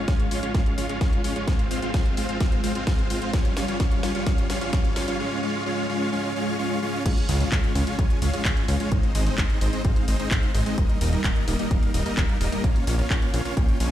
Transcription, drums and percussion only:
0.08 kick, snare, closed hi-hat
0.20 closed hi-hat
0.31 open hi-hat
0.43 closed hi-hat
0.54 kick, snare, closed hi-hat
0.66 closed hi-hat
0.78 open hi-hat
0.89 closed hi-hat
1.01 kick, snare, closed hi-hat
1.13 closed hi-hat
1.24 open hi-hat
1.36 closed hi-hat
1.48 kick, snare, closed hi-hat
1.59 closed hi-hat
1.71 open hi-hat
1.82 closed hi-hat
1.94 kick, snare, closed hi-hat
2.06 closed hi-hat
2.17 open hi-hat
2.29 closed hi-hat
2.41 kick, snare, closed hi-hat
2.52 closed hi-hat
2.64 open hi-hat
2.75 closed hi-hat
2.87 kick, snare, closed hi-hat
2.99 closed hi-hat
3.10 open hi-hat
3.22 closed hi-hat
3.33 kick, snare, closed hi-hat
3.45 closed hi-hat
3.57 snare, open hi-hat
3.68 closed hi-hat
3.80 kick, snare, closed hi-hat
3.92 closed hi-hat
4.03 snare, open hi-hat
4.15 closed hi-hat
4.27 kick, snare, closed hi-hat
4.38 closed hi-hat
4.50 snare, open hi-hat
4.61 closed hi-hat
4.73 kick, snare, closed hi-hat
4.85 closed hi-hat
4.96 snare, open hi-hat
5.08 closed hi-hat
7.06 kick, closed hi-hat, crash
7.17 closed hi-hat
7.29 open hi-hat, ride
7.41 closed hi-hat
7.52 kick, clap, closed hi-hat
7.64 closed hi-hat
7.75 open hi-hat, ride
7.87 closed hi-hat
7.99 kick, closed hi-hat
8.10 closed hi-hat
8.22 open hi-hat, ride
8.34 closed hi-hat
8.45 kick, clap, closed hi-hat
8.57 closed hi-hat
8.68 open hi-hat, ride
8.80 closed hi-hat
8.92 kick, closed hi-hat
9.03 closed hi-hat
9.15 open hi-hat, ride
9.27 closed hi-hat
9.38 kick, clap, closed hi-hat
9.50 closed hi-hat
9.61 open hi-hat, ride
9.73 closed hi-hat
9.85 kick, closed hi-hat
9.96 closed hi-hat
10.08 open hi-hat, ride
10.20 closed hi-hat
10.31 kick, clap, closed hi-hat
10.43 closed hi-hat
10.55 open hi-hat, ride
10.66 closed hi-hat
10.78 kick, closed hi-hat
10.89 closed hi-hat
11.01 open hi-hat, ride
11.13 closed hi-hat
11.24 kick, clap, closed hi-hat
11.36 closed hi-hat
11.48 open hi-hat, ride
11.59 closed hi-hat
11.71 kick, closed hi-hat
11.83 closed hi-hat
11.94 open hi-hat, ride
12.06 closed hi-hat
12.17 kick, clap, closed hi-hat
12.29 closed hi-hat
12.41 open hi-hat, ride
12.52 closed hi-hat
12.64 kick, closed hi-hat
12.76 closed hi-hat
12.87 open hi-hat, ride
12.99 closed hi-hat
13.10 kick, clap, closed hi-hat
13.22 closed hi-hat
13.34 open hi-hat, ride
13.45 closed hi-hat
13.57 kick, closed hi-hat
13.69 closed hi-hat
13.80 open hi-hat, ride

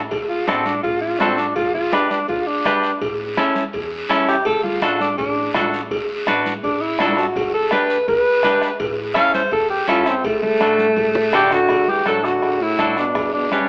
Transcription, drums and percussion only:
0.11 bombo low, cowbell, high conga, long guiro
0.48 bombo rim, cowbell, high conga, short guiro
0.65 high conga, short guiro
0.84 bombo low, cowbell, long guiro
1.20 bombo rim, cowbell, high conga, low timbale, short guiro
1.38 short guiro
1.56 bombo low, cowbell, long guiro
1.75 low conga
1.92 bombo rim, cowbell, high conga, short guiro
2.11 high conga, short guiro
2.28 bombo low, cowbell, high conga, long guiro
2.65 bombo rim, cowbell, high conga, low conga, short guiro
2.83 short guiro
3.01 bombo low, cowbell, long guiro
3.37 bombo rim, cowbell, high conga, short guiro
3.55 high conga, short guiro
3.73 bombo low, cowbell, high conga, long guiro
4.09 bombo rim, cowbell, high conga, short guiro
4.28 bombo rim, short guiro
4.45 bombo low, cowbell, high conga, long guiro
4.64 high conga
4.82 bombo rim, cowbell, high conga, short guiro
5.00 high conga, short guiro
5.18 bombo low, cowbell, long guiro
5.54 bombo low, bombo rim, cowbell, high conga, low conga, low timbale, short guiro
5.74 short guiro
5.91 bombo low, cowbell, long guiro
6.27 bombo rim, cowbell, high conga, short guiro
6.46 high conga, short guiro
6.63 bombo low, cowbell, high conga, long guiro
6.99 bombo rim, cowbell, high conga, low timbale, short guiro
7.17 bombo rim, short guiro
7.36 bombo low, cowbell, high conga, long guiro
7.71 bombo rim, cowbell, high conga, short guiro
7.90 short guiro
8.08 bombo low, cowbell, high conga, long guiro
8.43 bombo rim, cowbell, high conga, low conga, short guiro
8.62 bombo rim, short guiro
8.80 bombo low, cowbell, high conga, long guiro
9.15 bombo rim, cowbell, high conga, short guiro
9.34 high conga, short guiro
9.51 bombo low, cowbell, high conga, long guiro
9.88 bombo rim, cowbell, high conga, short guiro
10.06 bombo rim, short guiro
10.24 bombo low, cowbell, high conga, long guiro
10.43 high conga, low conga
10.61 bombo rim, cowbell, high conga, short guiro
10.79 high conga, short guiro
10.96 bombo low, cowbell, high conga, long guiro
11.15 low conga
11.33 bombo rim, cowbell, low conga, short guiro
11.51 bombo rim, low conga, short guiro
11.69 bombo low, bombo rim, cowbell, long guiro
11.88 high conga
12.06 bombo rim, high conga, short guiro
12.24 bombo rim, short guiro
12.42 bombo rim, cowbell, long guiro
12.78 bombo low, bombo rim, high conga, short guiro
12.97 bombo rim, short guiro
13.15 bombo low, bombo rim, cowbell, long guiro
13.52 bombo rim, high conga, short guiro

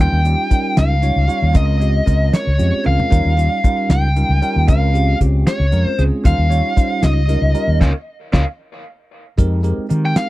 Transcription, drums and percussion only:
0.25 closed hi-hat
0.51 kick, closed hi-hat
0.77 snare, closed hi-hat
1.03 closed hi-hat
1.29 closed hi-hat
1.55 kick, closed hi-hat
1.81 closed hi-hat
2.07 kick, closed hi-hat
2.33 snare, closed hi-hat
2.59 closed hi-hat
2.86 high tom
3.00 floor tom
3.12 kick, closed hi-hat
3.39 closed hi-hat
3.64 kick, closed hi-hat
3.90 snare, closed hi-hat
4.16 closed hi-hat
4.42 closed hi-hat
4.68 kick, closed hi-hat
4.95 closed hi-hat
5.21 kick, closed hi-hat
5.47 snare, closed hi-hat
5.72 closed hi-hat
5.99 closed hi-hat
6.25 kick, closed hi-hat
6.52 closed hi-hat
6.77 kick, closed hi-hat
7.03 snare, closed hi-hat
7.29 closed hi-hat
7.55 closed hi-hat
7.81 kick, snare
8.34 kick, snare
9.38 kick, closed hi-hat
9.64 closed hi-hat
9.90 closed hi-hat
10.16 snare, closed hi-hat

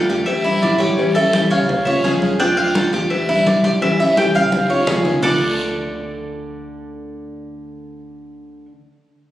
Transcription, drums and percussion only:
0.10 cowbell, short guiro
0.27 cowbell, high conga, long guiro
0.45 high conga
0.63 cowbell, high conga, short guiro
0.80 high conga, short guiro
0.98 cowbell, high conga, long guiro
1.16 high conga
1.33 cowbell, high conga, short guiro
1.51 cowbell, high conga, short guiro
1.69 cowbell, high conga, low conga, long guiro
1.87 high conga, low conga
2.04 cowbell, high conga, short guiro
2.22 high conga, short guiro
2.39 cowbell, high conga, long guiro
2.58 high conga
2.75 cowbell, high conga, short guiro
2.93 cowbell, short guiro
3.11 cowbell, high conga, long guiro
3.29 high conga
3.46 cowbell, high conga, short guiro
3.64 high conga, short guiro
3.82 cowbell, high bongo, high conga, long guiro
4.00 high conga
4.17 cowbell, high bongo, high conga, short guiro
4.35 cowbell, high conga, short guiro
4.52 cowbell, low bongo, high conga, long guiro
4.70 low bongo
4.87 cowbell, low conga, short guiro
5.04 low bongo, low conga, short guiro
5.23 low bongo, low conga, long guiro

